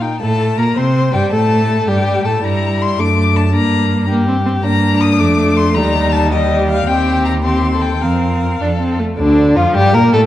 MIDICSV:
0, 0, Header, 1, 5, 480
1, 0, Start_track
1, 0, Tempo, 370828
1, 272, Time_signature, 6, 3, 24, 8
1, 8904, Tempo, 382897
1, 13144, End_track
2, 0, Start_track
2, 0, Title_t, "Violin"
2, 0, Program_c, 0, 40
2, 16, Note_on_c, 0, 79, 45
2, 250, Note_off_c, 0, 79, 0
2, 257, Note_on_c, 0, 81, 62
2, 750, Note_on_c, 0, 82, 61
2, 770, Note_off_c, 0, 81, 0
2, 998, Note_on_c, 0, 84, 62
2, 1017, Note_off_c, 0, 82, 0
2, 1466, Note_off_c, 0, 84, 0
2, 1474, Note_on_c, 0, 79, 59
2, 1703, Note_off_c, 0, 79, 0
2, 1711, Note_on_c, 0, 81, 63
2, 2419, Note_off_c, 0, 81, 0
2, 2434, Note_on_c, 0, 79, 64
2, 2906, Note_on_c, 0, 81, 56
2, 2925, Note_off_c, 0, 79, 0
2, 3151, Note_on_c, 0, 82, 68
2, 3170, Note_off_c, 0, 81, 0
2, 3642, Note_on_c, 0, 84, 70
2, 3662, Note_off_c, 0, 82, 0
2, 3875, Note_on_c, 0, 86, 73
2, 3895, Note_off_c, 0, 84, 0
2, 4349, Note_on_c, 0, 81, 70
2, 4368, Note_off_c, 0, 86, 0
2, 4584, Note_off_c, 0, 81, 0
2, 4593, Note_on_c, 0, 82, 76
2, 5286, Note_off_c, 0, 82, 0
2, 6008, Note_on_c, 0, 82, 84
2, 6483, Note_on_c, 0, 87, 88
2, 6503, Note_off_c, 0, 82, 0
2, 6716, Note_on_c, 0, 86, 76
2, 6736, Note_off_c, 0, 87, 0
2, 7202, Note_on_c, 0, 84, 82
2, 7221, Note_off_c, 0, 86, 0
2, 7436, Note_on_c, 0, 82, 93
2, 7455, Note_off_c, 0, 84, 0
2, 7921, Note_on_c, 0, 81, 85
2, 7940, Note_off_c, 0, 82, 0
2, 8162, Note_off_c, 0, 81, 0
2, 8170, Note_on_c, 0, 75, 74
2, 8646, Note_off_c, 0, 75, 0
2, 8652, Note_on_c, 0, 77, 76
2, 8889, Note_on_c, 0, 79, 76
2, 8908, Note_off_c, 0, 77, 0
2, 9356, Note_off_c, 0, 79, 0
2, 9363, Note_on_c, 0, 82, 68
2, 9460, Note_off_c, 0, 82, 0
2, 9598, Note_on_c, 0, 84, 61
2, 10075, Note_on_c, 0, 79, 60
2, 10093, Note_off_c, 0, 84, 0
2, 10327, Note_on_c, 0, 77, 58
2, 10346, Note_off_c, 0, 79, 0
2, 11550, Note_off_c, 0, 77, 0
2, 11799, Note_on_c, 0, 62, 71
2, 12239, Note_off_c, 0, 62, 0
2, 12267, Note_on_c, 0, 65, 63
2, 12502, Note_off_c, 0, 65, 0
2, 12510, Note_on_c, 0, 67, 78
2, 12743, Note_off_c, 0, 67, 0
2, 12750, Note_on_c, 0, 70, 71
2, 12845, Note_off_c, 0, 70, 0
2, 12984, Note_on_c, 0, 69, 72
2, 13144, Note_off_c, 0, 69, 0
2, 13144, End_track
3, 0, Start_track
3, 0, Title_t, "Violin"
3, 0, Program_c, 1, 40
3, 26, Note_on_c, 1, 63, 36
3, 267, Note_off_c, 1, 63, 0
3, 274, Note_on_c, 1, 69, 54
3, 722, Note_off_c, 1, 69, 0
3, 762, Note_on_c, 1, 70, 51
3, 984, Note_off_c, 1, 70, 0
3, 992, Note_on_c, 1, 72, 58
3, 1469, Note_on_c, 1, 67, 52
3, 1489, Note_off_c, 1, 72, 0
3, 1708, Note_off_c, 1, 67, 0
3, 1716, Note_on_c, 1, 69, 60
3, 2424, Note_on_c, 1, 67, 64
3, 2444, Note_off_c, 1, 69, 0
3, 2901, Note_off_c, 1, 67, 0
3, 2909, Note_on_c, 1, 69, 47
3, 3139, Note_off_c, 1, 69, 0
3, 3147, Note_on_c, 1, 64, 49
3, 3869, Note_on_c, 1, 62, 51
3, 3889, Note_off_c, 1, 64, 0
3, 4576, Note_off_c, 1, 62, 0
3, 4584, Note_on_c, 1, 62, 54
3, 5282, Note_off_c, 1, 62, 0
3, 5299, Note_on_c, 1, 67, 56
3, 6011, Note_on_c, 1, 62, 61
3, 6031, Note_off_c, 1, 67, 0
3, 7447, Note_off_c, 1, 62, 0
3, 7454, Note_on_c, 1, 63, 55
3, 8176, Note_on_c, 1, 67, 57
3, 8196, Note_off_c, 1, 63, 0
3, 8899, Note_off_c, 1, 67, 0
3, 8907, Note_on_c, 1, 67, 56
3, 9564, Note_off_c, 1, 67, 0
3, 9604, Note_on_c, 1, 67, 52
3, 9962, Note_off_c, 1, 67, 0
3, 9976, Note_on_c, 1, 69, 45
3, 10330, Note_on_c, 1, 70, 42
3, 10349, Note_off_c, 1, 69, 0
3, 11065, Note_on_c, 1, 69, 44
3, 11084, Note_off_c, 1, 70, 0
3, 11553, Note_off_c, 1, 69, 0
3, 11783, Note_on_c, 1, 62, 72
3, 12263, Note_on_c, 1, 65, 74
3, 12282, Note_off_c, 1, 62, 0
3, 12497, Note_off_c, 1, 65, 0
3, 12505, Note_on_c, 1, 67, 84
3, 12741, Note_on_c, 1, 70, 80
3, 12760, Note_off_c, 1, 67, 0
3, 12975, Note_off_c, 1, 70, 0
3, 12983, Note_on_c, 1, 69, 76
3, 13078, Note_off_c, 1, 69, 0
3, 13144, End_track
4, 0, Start_track
4, 0, Title_t, "Viola"
4, 0, Program_c, 2, 41
4, 270, Note_on_c, 2, 57, 55
4, 752, Note_on_c, 2, 58, 54
4, 771, Note_off_c, 2, 57, 0
4, 994, Note_on_c, 2, 60, 57
4, 1014, Note_off_c, 2, 58, 0
4, 1465, Note_off_c, 2, 60, 0
4, 1473, Note_on_c, 2, 55, 53
4, 1709, Note_on_c, 2, 57, 61
4, 1729, Note_off_c, 2, 55, 0
4, 2434, Note_on_c, 2, 55, 62
4, 2454, Note_off_c, 2, 57, 0
4, 2912, Note_on_c, 2, 57, 51
4, 2931, Note_off_c, 2, 55, 0
4, 3150, Note_off_c, 2, 57, 0
4, 3157, Note_on_c, 2, 55, 49
4, 3873, Note_on_c, 2, 57, 51
4, 3893, Note_off_c, 2, 55, 0
4, 4577, Note_off_c, 2, 57, 0
4, 4585, Note_on_c, 2, 58, 50
4, 5282, Note_off_c, 2, 58, 0
4, 5303, Note_on_c, 2, 58, 61
4, 5532, Note_off_c, 2, 58, 0
4, 5538, Note_on_c, 2, 60, 65
4, 5632, Note_off_c, 2, 60, 0
4, 5773, Note_on_c, 2, 60, 56
4, 5867, Note_off_c, 2, 60, 0
4, 6009, Note_on_c, 2, 58, 54
4, 6728, Note_on_c, 2, 57, 60
4, 6748, Note_off_c, 2, 58, 0
4, 7462, Note_on_c, 2, 55, 60
4, 7481, Note_off_c, 2, 57, 0
4, 8176, Note_off_c, 2, 55, 0
4, 8184, Note_on_c, 2, 55, 59
4, 8891, Note_off_c, 2, 55, 0
4, 8911, Note_on_c, 2, 60, 57
4, 9566, Note_off_c, 2, 60, 0
4, 9611, Note_on_c, 2, 60, 53
4, 10324, Note_off_c, 2, 60, 0
4, 10343, Note_on_c, 2, 60, 45
4, 11058, Note_off_c, 2, 60, 0
4, 11075, Note_on_c, 2, 62, 58
4, 11171, Note_off_c, 2, 62, 0
4, 11312, Note_on_c, 2, 60, 48
4, 11555, Note_on_c, 2, 57, 46
4, 11574, Note_off_c, 2, 60, 0
4, 11779, Note_off_c, 2, 57, 0
4, 11787, Note_on_c, 2, 50, 68
4, 12265, Note_on_c, 2, 53, 67
4, 12283, Note_off_c, 2, 50, 0
4, 12506, Note_on_c, 2, 55, 80
4, 12525, Note_off_c, 2, 53, 0
4, 12740, Note_off_c, 2, 55, 0
4, 12747, Note_on_c, 2, 58, 73
4, 12991, Note_on_c, 2, 57, 77
4, 13009, Note_off_c, 2, 58, 0
4, 13144, Note_off_c, 2, 57, 0
4, 13144, End_track
5, 0, Start_track
5, 0, Title_t, "Cello"
5, 0, Program_c, 3, 42
5, 272, Note_on_c, 3, 45, 54
5, 721, Note_off_c, 3, 45, 0
5, 749, Note_on_c, 3, 46, 55
5, 846, Note_off_c, 3, 46, 0
5, 989, Note_on_c, 3, 48, 55
5, 1463, Note_off_c, 3, 48, 0
5, 1472, Note_on_c, 3, 43, 53
5, 1569, Note_off_c, 3, 43, 0
5, 1712, Note_on_c, 3, 45, 53
5, 2419, Note_off_c, 3, 45, 0
5, 2432, Note_on_c, 3, 43, 56
5, 2903, Note_off_c, 3, 43, 0
5, 2911, Note_on_c, 3, 45, 53
5, 3143, Note_off_c, 3, 45, 0
5, 3150, Note_on_c, 3, 43, 49
5, 3820, Note_off_c, 3, 43, 0
5, 3867, Note_on_c, 3, 42, 52
5, 4586, Note_on_c, 3, 43, 55
5, 4606, Note_off_c, 3, 42, 0
5, 5993, Note_off_c, 3, 43, 0
5, 6001, Note_on_c, 3, 43, 61
5, 6720, Note_on_c, 3, 41, 57
5, 6739, Note_off_c, 3, 43, 0
5, 7449, Note_on_c, 3, 39, 68
5, 7469, Note_off_c, 3, 41, 0
5, 8886, Note_off_c, 3, 39, 0
5, 8893, Note_on_c, 3, 39, 63
5, 10337, Note_on_c, 3, 41, 52
5, 10356, Note_off_c, 3, 39, 0
5, 11060, Note_off_c, 3, 41, 0
5, 11068, Note_on_c, 3, 41, 44
5, 11545, Note_off_c, 3, 41, 0
5, 11793, Note_on_c, 3, 38, 69
5, 12236, Note_off_c, 3, 38, 0
5, 12259, Note_on_c, 3, 41, 68
5, 12356, Note_off_c, 3, 41, 0
5, 12504, Note_on_c, 3, 43, 73
5, 12742, Note_on_c, 3, 46, 70
5, 12761, Note_off_c, 3, 43, 0
5, 12965, Note_off_c, 3, 46, 0
5, 12973, Note_on_c, 3, 45, 76
5, 13070, Note_off_c, 3, 45, 0
5, 13144, End_track
0, 0, End_of_file